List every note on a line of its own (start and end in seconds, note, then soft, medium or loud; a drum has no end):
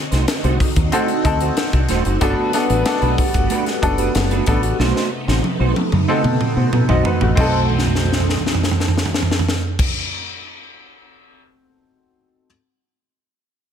0.00 2.19 D3 medium
0.00 2.19 C4 medium
0.00 2.19 D#4 medium
0.00 4.76 F#4 medium
0.11 0.24 C2 medium
0.11 0.26 A3 medium
0.11 0.27 D#4 soft
0.11 0.27 F#4 medium
0.11 0.27 C5 medium
0.11 snare soft
0.11 closed hi-hat soft
0.28 muted clean electric guitar stroke soft
0.28 snare loud
0.28 closed hi-hat medium
0.44 0.56 C2 medium
0.44 0.59 A3 medium
0.44 0.59 D#4 medium
0.44 0.59 F#4 medium
0.44 0.59 C5 medium
0.44 closed hi-hat soft
0.60 muted clean electric guitar stroke soft
0.60 kick loud
0.60 open hi-hat medium
0.76 0.89 D#2 medium
0.76 muted clean electric guitar stroke soft
0.76 kick loud
0.76 closed hi-hat medium
0.92 1.11 A3 medium
0.92 1.17 C4 medium
0.92 1.17 D#4 medium
0.92 1.08 D#4 medium
0.92 1.17 F#4 medium
0.92 1.08 F#4 medium
0.92 1.17 A4 loud
0.92 1.07 C5 medium
0.92 closed hi-hat medium
1.08 muted clean electric guitar stroke soft
1.08 closed hi-hat soft
1.25 1.49 D2 medium
1.25 1.99 C4 medium
1.25 1.99 D#4 medium
1.25 1.99 F#4 medium
1.25 1.99 A4 loud
1.25 muted clean electric guitar stroke soft
1.25 kick medium
1.25 closed hi-hat medium
1.41 1.56 A3 soft
1.41 1.56 D#4 medium
1.41 1.56 F#4 medium
1.41 1.56 C5 medium
1.41 closed hi-hat medium
1.57 muted clean electric guitar stroke soft
1.57 snare loud
1.57 closed hi-hat medium
1.73 1.86 C2 medium
1.73 muted clean electric guitar stroke soft
1.73 kick loud
1.73 closed hi-hat soft
1.89 2.02 D#1 medium
1.89 2.05 A3 medium
1.89 2.05 D#4 loud
1.89 2.04 F#4 medium
1.89 2.04 C5 loud
1.89 snare soft
1.89 closed hi-hat medium
2.05 2.18 F#1 medium
2.05 2.20 A3 medium
2.05 2.21 D#4 medium
2.05 2.20 F#4 medium
2.05 2.20 C5 medium
2.05 closed hi-hat soft
2.21 2.34 G1 loud
2.21 4.77 G3 medium
2.21 2.51 A3 medium
2.21 4.77 A3 medium
2.21 2.46 B3 loud
2.21 7.33 B3 medium
2.21 2.46 D4 medium
2.21 2.51 D4 medium
2.21 2.46 F#4 medium
2.21 2.51 F#4 medium
2.21 2.47 A4 loud
2.21 2.52 B4 medium
2.21 kick loud
2.21 closed hi-hat medium
2.53 2.78 B3 medium
2.53 2.79 D4 medium
2.53 2.79 F#4 medium
2.53 2.79 A4 loud
2.53 muted clean electric guitar stroke soft
2.53 snare soft
2.53 closed hi-hat medium
2.69 2.82 A1 medium
2.69 2.84 A3 soft
2.69 2.85 D4 medium
2.69 2.85 F#4 medium
2.69 2.84 B4 medium
2.69 closed hi-hat soft
2.85 3.60 B3 loud
2.85 3.60 D4 medium
2.85 3.60 F#4 medium
2.85 3.60 A4 loud
2.85 muted clean electric guitar stroke soft
2.85 snare loud
2.85 closed hi-hat medium
3.01 3.14 B1 medium
3.01 3.17 A3 medium
3.01 3.17 D4 medium
3.01 3.18 F#4 medium
3.01 3.18 B4 medium
3.01 closed hi-hat soft
3.18 muted clean electric guitar stroke soft
3.18 kick loud
3.18 open hi-hat medium
3.34 3.47 G1 medium
3.34 muted clean electric guitar stroke soft
3.34 kick loud
3.34 closed hi-hat medium
3.50 3.69 A3 medium
3.50 3.66 D4 medium
3.50 3.66 F#4 medium
3.50 3.65 B4 medium
3.50 closed hi-hat medium
3.66 muted clean electric guitar stroke soft
3.66 snare soft
3.66 closed hi-hat soft
3.82 4.07 F#1 medium
3.82 4.32 B3 medium
3.82 4.32 D4 medium
3.82 4.32 F#4 medium
3.82 4.32 A4 loud
3.82 muted clean electric guitar stroke soft
3.82 kick loud
3.82 closed hi-hat medium
3.98 4.14 A3 medium
3.98 4.14 D4 medium
3.98 4.14 F#4 medium
3.98 4.14 B4 medium
3.98 closed hi-hat medium
4.15 4.40 F#1 loud
4.15 snare loud
4.15 closed hi-hat medium
4.31 4.46 A3 medium
4.31 4.46 D4 medium
4.31 4.47 F#4 medium
4.31 4.47 B4 medium
4.31 closed hi-hat soft
4.46 4.72 A1 medium
4.46 4.62 A3 medium
4.46 4.79 B3 medium
4.46 4.62 D4 medium
4.46 4.80 D4 medium
4.46 4.62 F#4 medium
4.46 4.80 F#4 medium
4.46 4.80 A4 loud
4.46 4.62 B4 medium
4.46 kick loud
4.46 closed hi-hat medium
4.63 closed hi-hat soft
4.79 4.92 B1 loud
4.79 7.35 C3 medium
4.79 5.09 A3 medium
4.79 7.35 A3 medium
4.79 5.09 D#4 medium
4.79 7.35 D#4 medium
4.79 5.09 F#4 loud
4.79 5.10 C5 medium
4.79 snare medium
4.96 snare medium
5.12 muted clean electric guitar stroke soft
5.28 5.40 A1 medium
5.28 5.42 A3 soft
5.28 5.43 D#4 medium
5.28 5.43 F#4 medium
5.28 5.43 C5 medium
5.28 snare medium
5.43 muted clean electric guitar stroke soft
5.43 high tom medium
5.60 5.72 B1 medium
5.60 5.75 A3 medium
5.60 5.75 D#4 medium
5.60 5.76 F#4 medium
5.60 5.76 C5 medium
5.76 muted clean electric guitar stroke soft
5.76 high tom medium
5.92 6.05 F#2 medium
5.92 muted clean electric guitar stroke soft
5.92 mid tom medium
6.08 6.27 A3 medium
6.08 6.33 C4 medium
6.08 6.24 D#4 medium
6.08 6.33 D#4 medium
6.08 6.23 F#4 loud
6.08 6.33 F#4 medium
6.08 6.34 A4 loud
6.08 6.23 C5 loud
6.24 6.37 B2 loud
6.24 muted clean electric guitar stroke soft
6.24 mid tom medium
6.40 muted clean electric guitar stroke soft
6.40 mid tom medium
6.57 6.69 B2 loud
6.57 6.72 A3 medium
6.57 6.72 D#4 medium
6.57 6.72 F#4 medium
6.57 6.72 C5 medium
6.73 6.85 B2 loud
6.73 muted clean electric guitar stroke soft
6.73 mid tom medium
6.89 7.01 B1 medium
6.89 7.04 A3 medium
6.89 7.04 D#4 medium
6.89 7.05 F#4 medium
6.89 7.05 C5 medium
6.89 7.04 D#5 medium
6.89 floor tom medium
7.05 7.20 A3 medium
7.05 7.20 D#4 medium
7.05 7.21 D#4 medium
7.05 7.20 F#4 medium
7.05 7.21 B4 medium
7.05 7.20 C5 medium
7.05 floor tom loud
7.21 7.34 A1 medium
7.21 7.52 A3 medium
7.21 7.37 F#4 medium
7.21 muted clean electric guitar stroke soft
7.21 floor tom loud
7.35 9.88 B1 loud
7.35 9.88 B2 medium
7.35 10.44 A3 medium
7.35 9.88 A3 medium
7.35 9.87 C4 medium
7.35 9.88 C4 medium
7.35 9.88 D#4 medium
7.35 10.44 D#4 medium
7.35 9.89 F#4 medium
7.35 10.44 F#4 medium
7.35 kick loud
7.35 crash medium
7.40 9.89 A4 loud
7.40 10.44 C5 medium
7.70 floor tom soft
7.79 snare soft
7.86 floor tom medium
7.95 snare medium
8.03 floor tom medium
8.12 snare medium
8.20 floor tom medium
8.29 snare medium
8.38 floor tom medium
8.47 snare medium
8.55 floor tom medium
8.63 snare medium
8.71 floor tom medium
8.80 snare medium
8.88 floor tom medium
8.97 snare medium
9.06 floor tom medium
9.14 snare medium
9.22 floor tom medium
9.31 snare medium
9.39 floor tom medium
9.48 snare medium
9.79 kick loud
9.79 crash loud